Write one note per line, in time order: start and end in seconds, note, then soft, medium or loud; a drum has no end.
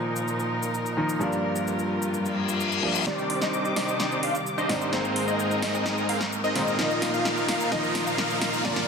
0.00 0.94 A#2 medium
0.00 1.19 A#2 medium
0.00 0.94 D#3 medium
0.00 0.95 F3 medium
0.00 1.19 F3 medium
0.00 0.95 A#3 medium
0.00 0.95 D#4 medium
0.00 1.19 D#4 medium
0.00 3.03 A#4 medium
0.16 shaker medium
0.28 shaker soft
0.39 shaker soft
0.63 shaker medium
0.74 shaker soft
0.86 shaker soft
0.97 1.18 D#3 medium
0.97 1.18 F3 medium
0.97 1.18 A#3 medium
0.97 1.18 D#4 medium
1.09 shaker medium
1.19 2.80 G2 medium
1.19 3.05 G2 medium
1.19 2.80 F3 medium
1.19 3.05 G3 medium
1.19 2.81 G3 medium
1.19 2.81 A#3 medium
1.19 2.81 D4 medium
1.19 3.05 F4 medium
1.19 shaker soft
1.32 shaker soft
1.56 shaker medium
1.67 shaker medium
1.79 shaker soft
2.02 shaker medium
2.14 reverse cymbal medium
2.14 shaker soft
2.25 shaker soft
2.49 shaker medium
2.60 shaker soft
2.72 shaker soft
2.83 3.04 F3 medium
2.83 3.04 G3 medium
2.83 3.04 A#3 medium
2.83 3.04 D4 medium
2.95 shaker medium
3.05 4.91 C3 medium
3.05 4.66 D#3 medium
3.05 4.91 D#3 medium
3.05 4.66 G3 medium
3.05 4.91 G3 medium
3.05 4.67 C4 medium
3.05 3.39 D4 medium
3.05 3.39 D#4 medium
3.05 3.39 G4 medium
3.05 3.39 C5 medium
3.05 3.39 D5 medium
3.05 4.91 D6 medium
3.05 snare soft
3.05 riser medium
3.05 shaker medium
3.19 shaker soft
3.30 open hi-hat loud
3.41 3.74 D4 medium
3.41 3.74 D#4 medium
3.41 3.74 G4 medium
3.41 3.74 C5 medium
3.41 3.74 D#5 medium
3.41 snare soft
3.41 shaker medium
3.53 shaker medium
3.65 shaker soft
3.76 4.20 D4 medium
3.76 4.20 D#4 medium
3.76 4.20 G4 medium
3.76 4.20 C5 medium
3.76 4.20 D#5 medium
3.76 snare soft
3.76 open hi-hat loud
3.88 shaker medium
4.00 snare soft
4.00 shaker medium
4.12 shaker soft
4.23 4.35 D4 medium
4.23 4.35 D#4 medium
4.23 4.35 G4 medium
4.23 4.35 C5 medium
4.23 4.35 F5 medium
4.23 open hi-hat loud
4.35 shaker medium
4.46 shaker medium
4.58 4.90 D4 medium
4.58 4.90 D#4 medium
4.58 4.90 G4 medium
4.58 4.90 C5 medium
4.58 4.90 D#5 medium
4.58 shaker soft
4.69 4.90 G#2 medium
4.69 4.90 D#3 medium
4.69 4.90 G3 medium
4.69 4.90 C4 medium
4.69 4.90 D4 medium
4.69 snare medium
4.69 open hi-hat medium
4.81 shaker medium
4.92 6.52 G#2 medium
4.92 6.77 G#2 medium
4.92 6.52 D#3 medium
4.92 6.53 G#3 medium
4.92 6.77 G#3 medium
4.92 6.53 A#3 medium
4.92 5.25 C4 medium
4.92 6.77 C4 medium
4.92 6.53 C4 medium
4.92 5.25 D#4 medium
4.92 5.25 G#4 medium
4.92 5.25 A#4 medium
4.92 8.88 A#4 medium
4.92 5.25 C5 medium
4.92 snare medium
4.92 shaker medium
5.05 shaker soft
5.16 open hi-hat loud
5.28 5.60 C4 medium
5.28 5.60 D#4 medium
5.28 5.60 G#4 medium
5.28 5.60 A#4 medium
5.28 5.60 D#5 medium
5.28 shaker medium
5.39 shaker medium
5.51 shaker soft
5.62 6.06 C4 medium
5.62 6.06 D#4 medium
5.62 6.06 G#4 medium
5.62 6.06 A#4 medium
5.62 6.06 D#5 medium
5.62 snare medium
5.62 open hi-hat loud
5.74 shaker medium
5.86 snare medium
5.86 shaker medium
5.98 shaker soft
6.09 6.21 C4 medium
6.09 6.21 D#4 medium
6.09 6.21 G#4 medium
6.09 6.21 A#4 medium
6.09 6.21 F5 medium
6.09 open hi-hat loud
6.21 snare medium
6.21 shaker medium
6.32 shaker medium
6.44 6.76 C4 medium
6.44 6.76 D#4 medium
6.44 6.76 G#4 medium
6.44 6.76 A#4 medium
6.44 6.76 D#5 loud
6.44 shaker soft
6.55 6.76 A#2 medium
6.55 6.76 D#3 medium
6.55 6.76 G#3 medium
6.55 6.76 A#3 medium
6.55 6.76 C4 medium
6.55 snare medium
6.55 open hi-hat loud
6.67 shaker medium
6.78 7.69 A#2 medium
6.78 8.63 A#2 medium
6.78 7.70 D#3 medium
6.78 7.70 F3 medium
6.78 8.63 F3 medium
6.78 7.11 A#3 medium
6.78 7.70 A#3 medium
6.78 7.11 D#4 medium
6.78 8.63 D#4 medium
6.78 7.71 D#4 medium
6.78 7.11 F4 medium
6.78 7.11 A#4 medium
6.78 7.11 D#5 medium
6.78 snare medium
6.78 shaker medium
6.91 shaker soft
7.02 snare medium
7.02 open hi-hat loud
7.14 7.46 A#3 medium
7.14 7.46 D#4 medium
7.14 7.46 F4 medium
7.14 7.46 A#4 medium
7.14 7.46 F5 medium
7.14 shaker medium
7.25 snare medium
7.25 shaker medium
7.37 shaker soft
7.48 7.70 A#3 medium
7.48 7.70 D#4 medium
7.48 7.70 F4 medium
7.48 7.70 A#4 medium
7.48 7.70 F5 medium
7.48 snare medium
7.48 open hi-hat loud
7.60 shaker medium
7.71 8.62 A#2 medium
7.71 8.63 D#3 medium
7.71 8.63 F3 medium
7.71 8.04 A#3 medium
7.71 8.63 A#3 medium
7.71 8.04 D#4 medium
7.71 8.64 D#4 medium
7.71 8.04 F4 medium
7.71 8.04 A#4 medium
7.71 8.04 D#5 medium
7.71 snare medium
7.71 shaker medium
7.84 shaker soft
7.95 snare medium
7.95 open hi-hat loud
8.07 8.39 A#3 medium
8.07 8.39 D#4 medium
8.07 8.39 F4 medium
8.07 8.39 A#4 medium
8.07 8.39 F5 medium
8.07 shaker medium
8.18 snare medium
8.18 shaker medium
8.30 shaker soft
8.42 8.63 A#3 medium
8.42 8.63 D#4 medium
8.42 8.63 F4 medium
8.42 8.63 A#4 medium
8.42 8.63 F5 medium
8.42 snare medium
8.42 open hi-hat loud
8.53 shaker medium
8.64 8.88 G2 medium
8.64 8.88 A#2 medium
8.64 8.88 D3 medium
8.64 8.88 F3 medium
8.64 8.88 G3 medium
8.64 8.88 A#3 medium
8.64 8.88 D4 medium
8.64 8.88 F4 medium
8.64 8.88 A#4 medium
8.64 8.88 D5 medium
8.64 8.88 D5 loud
8.64 snare medium
8.64 shaker medium
8.76 snare medium
8.76 shaker soft